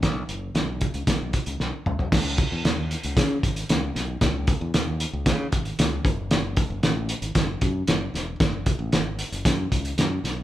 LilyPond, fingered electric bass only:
\new Staff \with { instrumentName = "Fingered electric bass" } { \clef bass \time 4/4 \key b \mixolydian \tempo 4 = 115 b,,8 fis,,8 b,,8. cis,16 b,,16 b,,16 r16 cis,16 b,,16 r16 cis,16 b,,16 | cis,8. e,16 dis,8. cis,16 cis8 gis,,8 cis,8 b,,8 | cis,8. e,16 dis,8. cis,16 cis8 gis,,8 cis,8 fis,,8~ | fis,,8. fis,,16 a,,8. gis,,16 fis,,8 fis,8 fis,,8 e,,8 |
fis,,8. a,,16 gis,,8. fis,,16 fis,8 cis,8 fis,8 b,,8 | }